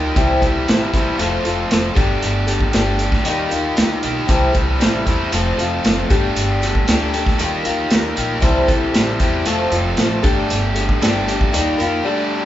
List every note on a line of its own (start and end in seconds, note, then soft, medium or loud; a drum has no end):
0.00 0.11 D2 medium
0.00 0.16 D#3 medium
0.00 0.15 G3 medium
0.00 0.15 A#3 medium
0.00 0.15 D#4 medium
0.00 0.16 D#4 medium
0.00 0.15 F4 medium
0.00 0.16 F4 medium
0.00 0.14 G4 medium
0.00 0.15 G4 medium
0.00 0.17 A#4 medium
0.16 0.36 C2 medium
0.16 0.42 C3 medium
0.16 0.42 E3 medium
0.16 0.42 G3 medium
0.16 1.19 A3 medium
0.16 1.18 C4 medium
0.16 0.42 C4 loud
0.16 0.41 E4 medium
0.16 1.19 E4 medium
0.16 1.19 G4 medium
0.16 0.39 A4 medium
0.16 kick loud
0.16 closed hi-hat medium
0.40 0.62 C2 loud
0.40 0.65 G3 soft
0.40 0.67 C4 medium
0.40 0.68 E4 medium
0.40 0.67 A4 medium
0.40 kick medium
0.40 closed hi-hat medium
0.66 0.88 A1 medium
0.66 0.93 G3 medium
0.66 0.93 C4 medium
0.66 0.92 E4 medium
0.66 0.91 A4 medium
0.66 snare loud
0.66 closed hi-hat medium
0.92 1.14 C2 medium
0.92 1.18 C3 medium
0.92 1.18 E3 medium
0.92 1.18 G3 soft
0.92 1.18 C4 medium
0.92 1.19 E4 soft
0.92 1.18 A4 medium
0.92 kick medium
0.92 closed hi-hat medium
1.18 1.39 F1 medium
1.18 1.94 F2 medium
1.18 1.95 C3 medium
1.18 1.44 F3 medium
1.18 1.44 A3 medium
1.18 1.96 A3 medium
1.18 1.45 C4 medium
1.18 1.96 C4 medium
1.18 1.45 F4 medium
1.18 1.96 F4 medium
1.18 1.43 A4 medium
1.18 1.96 A4 medium
1.18 closed hi-hat medium
1.44 1.65 F1 medium
1.44 1.70 C4 medium
1.44 1.71 F4 medium
1.44 1.70 A4 medium
1.44 closed hi-hat medium
1.70 1.91 F1 medium
1.70 1.96 A3 medium
1.70 1.97 C4 medium
1.70 1.96 F4 medium
1.70 1.94 A4 medium
1.70 snare loud
1.70 closed hi-hat medium
1.95 2.17 G1 medium
1.95 2.49 G3 medium
1.95 2.72 A3 medium
1.95 3.24 A3 medium
1.95 2.48 D4 medium
1.95 3.25 D4 medium
1.95 2.47 G4 medium
1.95 3.24 G4 medium
1.95 2.45 A4 medium
1.95 3.24 A4 medium
1.95 kick loud
1.95 closed hi-hat medium
2.22 2.63 G1 loud
2.22 closed hi-hat medium
2.47 2.72 D4 soft
2.47 2.73 G4 medium
2.47 2.73 A4 medium
2.47 closed hi-hat medium
2.61 kick medium
2.72 3.14 G1 medium
2.72 2.98 G3 medium
2.72 3.24 A3 medium
2.72 2.99 D4 medium
2.72 2.99 G4 medium
2.72 2.98 A4 medium
2.72 snare loud
2.72 closed hi-hat medium
2.99 3.25 D4 soft
2.99 3.26 G4 medium
2.99 3.25 A4 medium
2.99 closed hi-hat medium
3.12 kick medium
3.12 snare soft
3.25 3.45 D#2 medium
3.25 3.51 D#3 medium
3.25 3.51 G3 medium
3.25 4.01 A#3 medium
3.25 4.28 A#3 medium
3.25 3.51 D#4 medium
3.25 4.28 D#4 medium
3.25 4.28 F4 medium
3.25 3.49 F4 medium
3.25 4.28 G4 medium
3.25 4.02 G4 loud
3.25 3.48 A#4 medium
3.25 closed hi-hat loud
3.49 3.72 D#2 medium
3.49 3.75 D#4 soft
3.49 3.76 F4 soft
3.49 3.76 A#4 medium
3.49 closed hi-hat medium
3.75 3.98 D#2 medium
3.75 4.27 G3 medium
3.75 4.28 D#4 medium
3.75 4.29 F4 medium
3.75 4.29 A#4 medium
3.75 snare loud
3.75 closed hi-hat medium
4.03 4.24 B1 medium
4.03 4.28 D#3 medium
4.03 4.28 A#3 medium
4.03 4.27 D#4 medium
4.03 4.27 G4 medium
4.03 closed hi-hat medium
4.27 4.49 C2 loud
4.27 4.53 C3 medium
4.27 4.54 E3 medium
4.27 4.54 G3 medium
4.27 5.31 A3 medium
4.27 4.54 C4 medium
4.27 5.31 C4 medium
4.27 4.53 E4 medium
4.27 5.31 E4 medium
4.27 5.31 G4 medium
4.27 4.51 A4 loud
4.27 kick loud
4.27 closed hi-hat medium
4.27 shaker medium
4.52 4.75 C2 medium
4.52 4.77 G3 soft
4.52 4.79 C4 medium
4.52 4.80 E4 medium
4.52 4.79 A4 medium
4.52 kick medium
4.52 closed hi-hat medium
4.52 shaker medium
4.79 5.01 A1 medium
4.79 5.05 G3 medium
4.79 5.06 C4 medium
4.79 5.06 E4 medium
4.79 5.04 A4 medium
4.79 snare loud
4.79 closed hi-hat medium
4.79 shaker loud
5.05 5.27 E2 medium
5.05 5.31 C3 medium
5.05 5.31 E3 medium
5.05 5.32 G3 soft
5.05 5.32 C4 medium
5.05 5.32 E4 medium
5.05 5.32 A4 medium
5.05 kick medium
5.05 closed hi-hat medium
5.05 shaker medium
5.31 5.53 F1 medium
5.31 6.08 F2 medium
5.31 6.08 C3 medium
5.31 5.58 F3 medium
5.31 5.58 A3 medium
5.31 6.08 A3 medium
5.31 5.58 C4 medium
5.31 6.10 C4 medium
5.31 5.58 F4 medium
5.31 6.10 F4 medium
5.31 6.08 A4 medium
5.31 5.57 A4 medium
5.31 closed hi-hat loud
5.31 shaker loud
5.58 5.79 F1 medium
5.58 5.84 C4 soft
5.58 5.85 F4 medium
5.58 5.84 A4 medium
5.58 closed hi-hat medium
5.58 shaker medium
5.84 6.05 F#1 medium
5.84 6.10 A3 medium
5.84 6.11 C4 medium
5.84 6.10 F4 medium
5.84 6.09 A4 medium
5.84 snare loud
5.84 closed hi-hat medium
5.84 shaker medium
6.09 6.31 G1 medium
6.09 6.63 G3 medium
6.09 7.38 A3 medium
6.09 6.86 A3 medium
6.09 7.38 D4 medium
6.09 6.62 D4 medium
6.09 7.37 G4 medium
6.09 6.62 G4 medium
6.09 7.38 A4 medium
6.09 6.61 A4 medium
6.09 kick loud
6.09 closed hi-hat medium
6.09 shaker medium
6.36 6.76 G1 loud
6.36 closed hi-hat loud
6.36 shaker loud
6.61 6.88 G4 soft
6.61 6.88 A4 medium
6.61 closed hi-hat medium
6.61 shaker medium
6.66 6.88 D4 medium
6.75 kick medium
6.88 7.28 D2 medium
6.88 7.13 G3 medium
6.88 7.38 A3 medium
6.88 7.14 D4 medium
6.88 7.14 G4 medium
6.88 7.13 A4 medium
6.88 snare loud
6.88 closed hi-hat medium
6.88 shaker loud
7.13 7.40 D4 medium
7.13 7.41 G4 medium
7.13 7.40 A4 medium
7.13 closed hi-hat medium
7.13 shaker medium
7.26 kick medium
7.26 snare soft
7.38 7.59 D#2 medium
7.38 7.65 D#3 medium
7.38 7.65 G3 medium
7.38 8.41 A#3 medium
7.38 8.16 A#3 medium
7.38 8.42 D#4 medium
7.38 7.65 D#4 loud
7.38 8.42 F4 medium
7.38 7.64 F4 medium
7.38 8.40 G4 medium
7.38 8.15 G4 loud
7.38 7.62 A#4 medium
7.38 closed hi-hat loud
7.38 shaker loud
7.63 7.85 D#2 loud
7.63 7.90 D#4 soft
7.63 7.91 F4 medium
7.63 7.90 A#4 medium
7.63 closed hi-hat medium
7.63 shaker medium
7.90 8.11 D#2 medium
7.90 8.40 G3 medium
7.90 8.42 D#4 medium
7.90 8.42 F4 medium
7.90 8.43 A#4 medium
7.90 snare loud
7.90 closed hi-hat medium
7.90 shaker medium
8.16 8.37 A#1 medium
8.16 8.42 D#3 medium
8.16 8.42 A#3 medium
8.16 8.41 D#4 medium
8.16 8.41 G4 medium
8.16 closed hi-hat medium
8.16 shaker medium
8.40 8.63 C2 loud
8.40 8.68 C3 medium
8.40 8.68 E3 medium
8.40 8.68 G3 medium
8.40 9.45 A3 medium
8.40 9.45 C4 medium
8.40 8.69 C4 medium
8.40 8.68 E4 loud
8.40 9.45 E4 medium
8.40 9.45 G4 medium
8.40 9.19 G4 medium
8.40 8.66 A4 loud
8.40 kick loud
8.40 closed hi-hat medium
8.40 shaker loud
8.67 8.89 C2 medium
8.67 8.92 G3 soft
8.67 8.94 C4 medium
8.67 8.95 E4 medium
8.67 8.94 A4 medium
8.67 kick medium
8.67 closed hi-hat medium
8.67 shaker medium
8.93 9.15 A1 loud
8.93 9.20 G3 medium
8.93 9.20 C4 medium
8.93 9.19 E4 medium
8.93 9.17 A4 medium
8.93 snare loud
8.93 closed hi-hat medium
8.93 shaker loud
9.18 9.41 E2 loud
9.18 9.46 E3 medium
9.18 9.45 G3 medium
9.18 9.45 C4 medium
9.18 9.46 E4 medium
9.18 9.45 G4 medium
9.18 9.45 A4 medium
9.18 kick medium
9.18 closed hi-hat medium
9.18 shaker medium
9.22 9.45 C3 medium
9.45 9.67 F1 medium
9.45 10.22 F2 medium
9.45 10.23 C3 loud
9.45 9.72 F3 medium
9.45 9.72 A3 medium
9.45 10.23 A3 medium
9.45 10.23 C4 medium
9.45 9.72 C4 medium
9.45 10.23 F4 medium
9.45 9.72 F4 medium
9.45 10.23 A4 medium
9.45 9.70 A4 loud
9.45 closed hi-hat loud
9.45 shaker loud
9.71 9.92 F1 loud
9.71 9.97 C4 soft
9.71 9.98 F4 medium
9.71 9.98 A4 medium
9.71 closed hi-hat medium
9.71 shaker medium
9.97 10.18 A1 medium
9.97 10.23 A3 medium
9.97 10.24 C4 medium
9.97 10.23 F4 medium
9.97 10.22 A4 medium
9.97 snare loud
9.97 closed hi-hat medium
9.97 shaker medium
10.23 10.76 G3 medium
10.23 11.00 A3 loud
10.23 11.53 A3 medium
10.23 10.76 D4 medium
10.23 11.53 D4 medium
10.23 10.76 G4 medium
10.23 11.52 G4 medium
10.23 10.74 A4 medium
10.23 11.53 A4 medium
10.23 kick loud
10.23 closed hi-hat medium
10.50 10.91 G1 loud
10.50 closed hi-hat medium
10.50 shaker loud
10.75 11.01 D4 soft
10.75 11.02 G4 medium
10.75 11.02 A4 medium
10.75 closed hi-hat medium
10.89 kick medium
11.01 11.43 G1 loud
11.01 11.27 G3 medium
11.01 11.52 A3 medium
11.01 11.28 D4 medium
11.01 11.28 G4 medium
11.01 11.26 A4 medium
11.01 snare loud
11.01 closed hi-hat loud
11.01 shaker loud
11.27 11.53 D4 soft
11.27 11.54 G4 medium
11.27 11.54 A4 medium
11.27 closed hi-hat medium
11.27 shaker medium
11.41 kick medium
11.52 11.75 D#2 medium
11.52 11.79 D#3 medium
11.52 11.79 G3 medium
11.52 12.04 A#3 medium
11.52 12.05 A#3 medium
11.52 11.80 D#4 loud
11.52 12.05 D#4 medium
11.52 12.05 F4 medium
11.52 11.79 F4 medium
11.52 12.05 G4 medium
11.52 12.05 G4 loud
11.52 11.77 A#4 medium
11.52 closed hi-hat loud
11.52 shaker loud
11.78 12.00 F2 loud
11.78 12.04 D#4 soft
11.78 12.05 F4 medium
11.78 12.05 A#4 medium
11.78 closed hi-hat medium
11.78 shaker medium
12.04 12.45 G3 medium
12.04 12.45 A3 medium
12.04 12.45 D4 medium
12.04 12.32 D4 medium
12.04 12.45 G4 medium
12.04 12.40 G4 medium
12.04 12.42 A4 medium
12.04 12.45 A4 medium
12.27 12.45 B3 medium
12.27 12.45 C4 medium
12.33 12.45 D4 medium
12.33 12.45 E4 medium
12.38 12.45 F4 medium
12.38 12.45 G4 medium